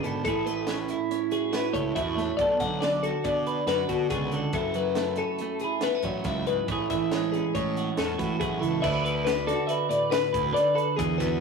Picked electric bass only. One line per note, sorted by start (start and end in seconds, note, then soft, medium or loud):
0.04 0.23 G#1 medium
0.25 0.93 A1 medium
1.74 1.91 C#2 medium
1.95 2.29 E2 medium
2.38 2.55 B1 medium
2.60 3.11 B1 medium
3.25 3.59 B2 medium
3.66 3.84 F#2 medium
3.89 4.06 B2 medium
4.10 4.44 C#2 medium
4.53 5.21 F#1 medium
6.04 6.20 A1 medium
6.25 6.59 C#2 medium
6.68 6.85 A1 medium
6.90 7.41 A1 medium
7.55 7.89 A2 medium
7.98 8.14 E2 medium
8.19 8.36 A2 medium
8.40 8.60 B1 medium
8.61 8.81 C#2 medium
8.84 9.52 D2 medium
10.34 10.51 D2 medium
10.99 11.16 E2 medium
11.20 11.40 E2 medium